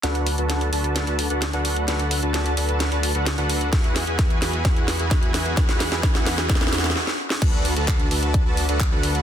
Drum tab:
CC |--------------------------------|--------------------------------|--------------------------------|--------------------------------|
HH |x-x-o-x-x-x-o-x-x-x-o-x-x-x-o-x-|x-x-o-x-x-x-o-x-x-x-o-x-x-x-o-x-|x-x-o-x-x-x-o-x-x-x-o-x-x-x-o-x-|x-x-o-x-x-x-o-x-x-x-o-x---------|
CP |--------------------------------|--------------------------------|--------------------------------|--------------------------------|
SD |o-------o-------o-------o-------|o-------o-------o-------o-------|o---o---o---o---o---o---o---o---|o-o-o-o-o-o-o-o-ooooooooo-o---o-|
BD |--------------------------------|--------------------------------|o-------o-------o-------o-------|o-------o-------o---------------|

CC |x-------------------------------|
HH |x---o-x-x-x-o-x-x---o-x-x---o-x-|
CP |--------x---------------x-------|
SD |--------------------------------|
BD |o-------o-------o-------o-------|